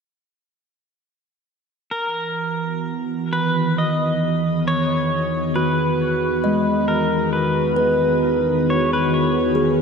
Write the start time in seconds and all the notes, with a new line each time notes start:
1.91 E2 A#4
1.96 E3
2.27 F#4
2.43 B3
2.90 D#3
3.33 B4
3.63 G#4
3.78 D#5
4.68 C#5
5.55 F#4 B4
6.44 G#3 D#5
6.88 A#4
7.33 B4
7.76 B4
8.70 C#5
8.93 B4
9.14 C#5
9.55 G#4